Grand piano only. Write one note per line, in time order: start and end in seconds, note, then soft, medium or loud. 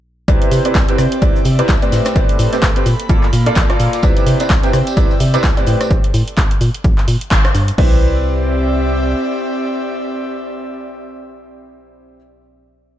0.28 0.62 C3 medium
0.28 0.62 C4 medium
0.28 0.62 E4 medium
0.28 0.62 B4 medium
0.28 0.62 D5 loud
0.65 0.77 C3 medium
0.65 0.77 C4 medium
0.65 0.77 E4 medium
0.65 0.77 B4 medium
0.65 0.77 D5 medium
0.89 1.01 C3 medium
0.89 1.01 C4 medium
0.89 1.01 E4 medium
0.89 1.01 B4 medium
0.89 1.01 G5 medium
1.22 1.37 C3 medium
1.22 1.37 C4 medium
1.22 1.37 E4 medium
1.22 1.37 B4 medium
1.22 1.37 D5 medium
1.59 1.71 C3 loud
1.59 1.71 C4 medium
1.59 1.71 E4 medium
1.59 1.71 B4 medium
1.59 1.71 D5 loud
1.82 2.13 A2 medium
1.82 2.13 C4 medium
1.82 2.13 G4 medium
1.82 2.13 B4 medium
1.82 2.13 D5 medium
2.16 2.49 A2 loud
2.16 2.49 C4 medium
2.16 2.49 G4 medium
2.16 2.49 B4 medium
2.16 2.49 D5 loud
2.53 2.65 A2 medium
2.53 2.65 C4 medium
2.53 2.65 G4 medium
2.53 2.65 B4 medium
2.53 2.65 D5 medium
2.76 2.85 C4 medium
2.76 2.85 G4 medium
2.76 2.85 B4 medium
2.76 2.85 G5 medium
3.09 3.25 A#2 medium
3.09 3.25 A#3 medium
3.09 3.25 F4 medium
3.09 3.25 A4 medium
3.09 3.25 D5 medium
3.46 3.59 A#2 loud
3.46 3.59 A#3 medium
3.46 3.59 F4 medium
3.46 3.59 A4 medium
3.46 3.59 D5 loud
3.70 4.01 A#2 medium
3.70 4.01 A#3 medium
3.70 4.01 F4 medium
3.70 4.01 A4 medium
3.70 4.01 D5 medium
4.03 4.37 C3 loud
4.03 4.37 C4 medium
4.03 4.37 E4 medium
4.03 4.37 B4 medium
4.03 4.37 D5 loud
4.40 4.52 C3 medium
4.40 4.52 C4 medium
4.40 4.52 E4 medium
4.40 4.52 B4 medium
4.40 4.52 D5 medium
4.64 4.76 C3 medium
4.64 4.76 C4 medium
4.64 4.76 E4 medium
4.64 4.76 B4 medium
4.64 4.76 G5 loud
4.97 5.12 C3 medium
4.97 5.12 C4 medium
4.97 5.12 E4 medium
4.97 5.12 B4 medium
4.97 5.12 D5 loud
5.34 5.46 C3 loud
5.34 5.46 C4 medium
5.34 5.46 E4 medium
5.34 5.46 B4 medium
5.34 5.46 D5 loud
5.57 5.88 A2 medium
5.57 5.88 C4 medium
5.57 5.88 G4 medium
5.57 5.88 B4 medium
5.57 5.88 D5 medium
7.78 12.16 C4 medium
7.78 12.17 E4 medium
7.78 12.17 B4 medium
7.78 12.17 D5 medium